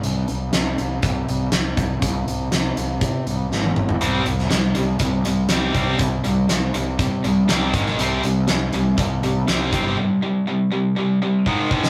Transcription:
<<
  \new Staff \with { instrumentName = "Distorted electric guitar" } { \clef bass \time 4/4 \key c \minor \tempo 4 = 121 r1 | r1 | <c g c'>8 <c g>8 <c g>8 <c g>8 <c g>8 <c g>8 <c g c'>8 <c g c'>8 | <c g>8 <c g>8 <c g>8 <c g>8 <c g>8 <c g>8 <c g c'>8 <aes, ees aes>8 |
<c g c'>8 <c g>8 <c g>8 <c g>8 <c g>8 <c g>8 <c g c'>8 <c g c'>8 | <c g>8 <c g>8 <c g>8 <c g>8 <c g>8 <c g>8 <aes, ees aes>8 <aes, ees aes>8 | }
  \new Staff \with { instrumentName = "Overdriven electric guitar" } { \clef bass \time 4/4 \key c \minor r1 | r1 | <c g c'>8 <c g>8 <c g>8 <c g>8 <c g>8 <c g>8 <c g c'>8 <c g c'>8 | <c g>8 <c g>8 <c g>8 <c g>8 <c g>8 <c g>8 <c g c'>8 <aes, ees aes>8 |
<c g c'>8 <c g>8 <c g>8 <c g>8 <c g>8 <c g>8 <c g c'>8 <c g c'>8 | <c g>8 <c g>8 <c g>8 <c g>8 <c g>8 <c g>8 <aes, ees aes>8 <aes, ees aes>8 | }
  \new Staff \with { instrumentName = "Fingered electric bass" } { \clef bass \time 4/4 \key c \minor c,8 c,8 c,8 c,8 c,8 c,8 c,8 c,8 | c,8 c,8 c,8 c,8 c8 c,8 aes,,8 aes,,8 | c,8 c,8 c,8 c,8 c,8 c,8 c,8 c,8 | c,8 c,8 c,8 c,8 c8 c,8 c,8 aes,,8 |
c,8 c,8 c,8 c,8 c,8 c,8 c,8 g,,8 | r1 | }
  \new DrumStaff \with { instrumentName = "Drums" } \drummode { \time 4/4 hh8 hh8 <hh sn>8 hh8 <hh bd>8 hh8 <hh sn>8 <hh bd>8 | <hh bd>8 hh8 <hh sn>8 hh8 <hh bd>8 hh8 sn16 tommh16 toml16 tomfh16 | hh8 hh16 sn16 <hh sn>8 hh8 <hh bd>8 hh8 <hh sn>8 <hh bd>8 | <hh bd>8 hh8 <hh sn>8 hh8 <hh bd>8 hh8 <hh sn>8 <hh bd>16 sn16 |
hh8 hh8 <hh sn>8 hh8 <hh bd>8 hh8 <hh sn>8 <hh bd>8 | r4 r4 r4 bd8 bd16 sn16 | }
>>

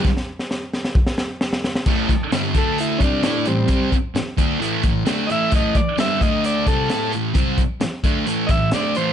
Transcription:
<<
  \new Staff \with { instrumentName = "Transistor combo organ" } { \time 4/4 \key a \minor \tempo 4 = 131 r1 | r4. a'8 e'8 <cis' d'>4 <g c'>8~ | <g c'>8 r2. <dis'' e''>8 | dis''8 d''8 e''8 dis''8 d''8 a'4 r8 |
r2 r8 <dis'' e''>8 d''8 c''8 | }
  \new Staff \with { instrumentName = "Distorted electric guitar" } { \clef bass \time 4/4 \key a \minor r1 | <a, e a>8 r8 <g, d g>8 <d a d'>4 <c g c'>8 <a e' a'>8 <a, e>8 | <c g c'>8 r4 <d a d'>8 <a, e a>8 <a, e>8 <d a d'>8 <a, e a>8 | <a, e a>8 r8 <g, d g>8 <d a d'>4 <c g c'>8 <a e' a'>8 <a, e>8 |
<c g c'>8 r4 <d a d'>8 <a, e a>8 <a, e>8 <d a d'>8 <a, e a>8 | }
  \new DrumStaff \with { instrumentName = "Drums" } \drummode { \time 4/4 <bd sn>16 sn8 sn16 sn8 sn16 sn16 bd16 sn16 sn8 sn16 sn16 sn16 sn16 | <cymc bd>8 <hh bd>8 <hh sn>8 <hh bd>8 hh8 <hh bd>8 <hh sn>8 hh8 | <hh bd>8 <hh bd>8 <hh sn>8 <hh bd>8 hh8 <hh bd>8 <hh sn>8 hh8 | <hh bd>8 <hh bd>8 <hh sn>8 <hh bd>8 hh8 <hh bd>8 <hh sn>8 hh8 |
<hh bd>8 <hh bd>8 <hh sn>8 <hh bd>8 hh8 <hh bd>8 <hh sn>8 hh8 | }
>>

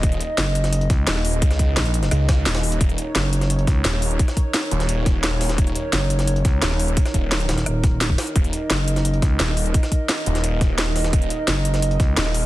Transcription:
<<
  \new Staff \with { instrumentName = "Analog synth pad" } { \time 4/4 \key ees \minor \tempo 4 = 173 << { ees''1~ | ees''1 | des''1~ | des''1~ |
des''1~ | des''1 | ees''1~ | ees''1~ |
ees''1 | } \\ { <ees' bes'>1~ | <ees' bes'>1~ | <ees' bes'>1~ | <ees' bes'>1~ |
<ees' bes'>1~ | <ees' bes'>1~ | <ees' bes'>1~ | <ees' bes'>1~ |
<ees' bes'>1 | } >> }
  \new Staff \with { instrumentName = "FM bass" } { \clef bass \time 4/4 \key ees \minor r4 ges,,4. des,8 r4 | r4 bes,,4 r2 | r4 ges,,4. des,8 r4 | r1 |
r4 ges,,4. des,8 r4 | r4. ees,,8 ees,,4. r8 | r4 ges,,4. des,8 r4 | r1 |
r4 ges,,4. des,8 r4 | }
  \new Staff \with { instrumentName = "Detuned saw bass" } { \clef bass \time 4/4 \key ees \minor ees,,8 r2 r8 ees,,4 | des,4 r4 des,4 ees,,4 | ees,,8 r2 r8 ees,,4 | r4. ees,,2~ ees,,8 |
ees,,8 r2 r8 ees,,4 | r8 ees,,4 r2 r8 | ees,,8 r2 r8 ees,,4 | r4. ees,,2~ ees,,8 |
ees,,8 r2 r8 ees,,4 | }
  \new DrumStaff \with { instrumentName = "Drums" } \drummode { \time 4/4 <hh bd>16 hh16 hh8 <hh sn>8 hh16 <hh sn>16 hh16 hh16 <hh bd sn>8 <hh sn>16 <ss sn>16 <hh hho>16 hh16 | <hh bd>16 <hh ss sn>16 <hh bd>8 <hh sn>16 hh16 hh16 <hh sn>16 <hh ss>8 <hh bd sn>8 <hh sn>16 <hh sn>16 hho16 hh16 | <hh bd>16 hh16 hh8 <hh sn>8 hh16 <hh sn>16 hh16 hh16 <hh bd sn>8 <hh sn>16 <ss sn>16 <hh hho>16 hh16 | <hh bd>16 <hh ss sn>16 <hh bd>8 <hh sn>16 hh16 hh16 <hh sn>16 hh8 <hh bd sn>8 <hh sn>8 <hh hho sn>16 <hh sn>16 |
<hh bd>16 hh16 hh8 <hh sn>8 hh16 <hh sn>16 hh16 hh16 <hh bd sn>8 <hh sn>16 <ss sn>16 <hh hho>16 hh16 | <hh bd>16 <hh ss sn>16 <hh bd>8 <hh sn>16 hh16 <hh sn>16 <hh sn>16 <hh ss>8 <hh bd sn>8 <hh sn>16 bd16 <hh hho sn>16 hh16 | <hh bd>16 hh16 hh8 <hh sn>8 hh16 <hh sn>16 hh16 hh16 <hh bd sn>8 <hh sn>16 <ss sn>16 <hh hho>16 hh16 | <hh bd>16 <hh ss sn>16 <hh bd>8 <hh sn>16 hh16 hh16 <hh sn>16 hh8 <hh bd sn>8 <hh sn>8 <hh hho sn>16 <hh sn>16 |
<hh bd>16 hh16 hh8 <hh sn>8 hh16 <hh sn>16 hh16 hh16 <hh bd sn>8 <hh sn>16 <ss sn>16 <hh hho>8 | }
>>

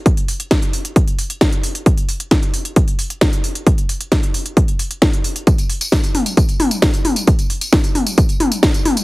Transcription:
\new DrumStaff \with { instrumentName = "Drums" } \drummode { \time 4/4 \tempo 4 = 133 <hh bd>16 hh16 hho16 hh16 <hh bd sn>16 hh16 hho16 hh16 <hh bd>16 hh16 hho16 hh16 <hh bd sn>16 hh16 hho16 hh16 | <hh bd>16 hh16 hho16 hh16 <hh bd sn>16 hh16 hho16 hh16 <hh bd>16 hh16 hho16 hh16 <hh bd sn>16 hh16 hho16 hh16 | <hh bd>16 hh16 hho16 hh16 <hh bd sn>16 hh16 hho16 hh16 <hh bd>16 hh16 hho16 hh16 <hh bd sn>16 hh16 hho16 hh16 | <hh bd tamb>16 <hh tamb>16 hho16 <hh tamb>16 <hh bd sn>16 <hh tamb>16 <hho toml>16 <hh tamb>16 <hh bd tamb>16 <hh tamb>16 <hho toml>16 <hh tamb>16 <hh bd sn tamb>16 <hh tamb>16 <hho toml>16 <hh tamb>16 |
<hh bd tamb>16 <hh tamb>16 hho16 <hh tamb>16 <hh bd sn>16 <hh tamb>16 <hho toml>16 <hh tamb>16 <hh bd tamb>16 <hh tamb>16 <hho toml>16 <hh tamb>16 <hh bd sn tamb>16 <hh tamb>16 <hho toml>16 <hh tamb>16 | }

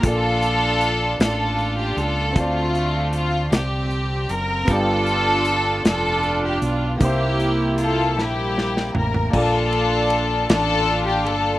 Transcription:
<<
  \new Staff \with { instrumentName = "Grand piano" } { \time 6/8 \key bes \lydian \tempo 4. = 52 <bes f' a' d''>2. | <c' f' d'' a''>2. | <b f' g' d''>2. | <bes ees' g' c'' e''>2. |
<bes d' f' a' d''>2. | }
  \new Staff \with { instrumentName = "Grand piano" } { \clef bass \time 6/8 \key bes \lydian bes,4. r4. | d4. r4. | g,4. r4. | c4. r4. |
bes,4. r4. | }
  \new Staff \with { instrumentName = "String section" } { \time 6/8 \key bes \lydian << { a'4. a'8. g'16 a'8 | f'4 f'8 g'4 bes'8 | a'4. a'8. g'16 f'8 | g'4 <f' a'>8 <e' g'>4 bes'8 |
a'4. a'8. g'16 a'8 | } \\ { <d' f'>4. <d' f'>4. | <a c'>4. c'4. | <d' f'>4. <d' f'>4. | <bes e'>4. <g bes e'>4. |
<d' f'>4. <d' f'>4. | } >> }
  \new Staff \with { instrumentName = "Fingered electric bass" } { \clef bass \time 6/8 \key bes \lydian bes,,4. a,,4 des,8 | d,4. c,4 ges,,8 | g,,4. f,,4 b,,8 | c,4. bes,,4 a,,8 |
bes,,4. a,,4 g,,8 | }
  \new DrumStaff \with { instrumentName = "Drums" } \drummode { \time 6/8 <hh bd>8 hh8 hh8 <hh sn>8 hh8 hh8 | <hh bd>8 hh8 hh8 <hh sn>8 hh8 hh8 | <hh bd>8 hh8 hh8 <hh sn>8 hh8 hh8 | <hh bd>8 hh8 hh8 sn8 sn16 sn16 tomfh16 tomfh16 |
<cymc bd>8 cymr8 cymr8 <cymr sn>8 cymr8 cymr8 | }
>>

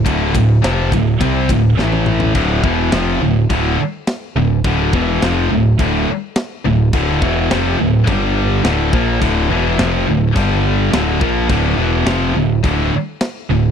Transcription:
<<
  \new Staff \with { instrumentName = "Distorted electric guitar" } { \clef bass \time 4/4 \key d \minor \tempo 4 = 105 <d, a, d>8 <d, a,>8 <f, c f>8 <d, a,>8 <c g c'>8 <d, a,>8 <a, e a>4 | <d, a, d>8 <e, b, e>8 <f, c f>8 <d, a,>8 <d, a, d>8 r4 <d, a,>8 | <d, a, d>8 <e, b, e>8 <f, c f>8 <d, a,>8 <d, a, d>8 r4 <d, a,>8 | <d, a, d>8 <e, b, e>8 <f, c f>8 <d, a,>8 <g, d g>4 <d, a, d>8 <bes, f bes>8 |
<d, a, d>8 <e, b, e>8 <f, c f>8 <d, a,>8 <g, d g>4 <d, a, d>8 <bes, f bes>8 | <d, a, d>8 <e, b, e>8 <f, c f>8 <d, a,>8 <d, a, d>8 r4 <d, a,>8 | }
  \new Staff \with { instrumentName = "Distorted electric guitar" } { \clef bass \time 4/4 \key d \minor <d, a, d>8 <d, a,>8 <f, c f>8 <d, a,>8 <c g c'>8 <d, a,>8 <a, e a>4 | <d, a, d>8 <e, b, e>8 <f, c f>8 <d, a,>8 <d, a, d>8 r4 <d, a,>8 | <d, a, d>8 <e, b, e>8 <f, c f>8 <d, a,>8 <d, a, d>8 r4 <d, a,>8 | <d, a, d>8 <e, b, e>8 <f, c f>8 <d, a,>8 <g, d g>4 <d, a, d>8 <bes, f bes>8 |
<d, a, d>8 <e, b, e>8 <f, c f>8 <d, a,>8 <g, d g>4 <d, a, d>8 <bes, f bes>8 | <d, a, d>8 <e, b, e>8 <f, c f>8 <d, a,>8 <d, a, d>8 r4 <d, a,>8 | }
  \new Staff \with { instrumentName = "Picked electric bass" } { \clef bass \time 4/4 \key d \minor d,,8 d,,8 f,,8 d,,8 c,8 d,,8 a,,4 | d,,8 e,,8 f,,8 d,,8 d,,8 r4 d,,8 | d,,8 e,,8 f,,8 d,,8 d,,8 r4 d,,8 | d,,8 e,,8 f,,8 d,,8 g,,4 d,,8 bes,,8 |
d,,8 e,,8 f,,8 d,,8 g,,4 d,,8 bes,,8 | d,,8 e,,8 f,,8 d,,8 d,,8 r4 d,,8 | }
  \new DrumStaff \with { instrumentName = "Drums" } \drummode { \time 4/4 <bd cymr>8 <bd cymr>8 <cymr sn>8 <bd cymr>8 <bd cymr>8 <bd cymr>8 sn16 tommh16 toml16 tomfh16 | <cymc bd>8 bd8 <cymc sn>4 <cymc bd>4 <cymc sn>4 | <cymc bd>8 bd8 <cymc sn>4 <cymc bd>4 <cymc sn>4 | <cymc bd>8 bd8 <cymc sn>4 <cymc bd>4 <cymc sn>8 bd8 |
<cymc bd>4 <cymc sn>4 <cymc bd>4 <cymc sn>8 bd8 | <cymc bd>4 <cymc sn>4 <cymc bd>4 <cymc sn>4 | }
>>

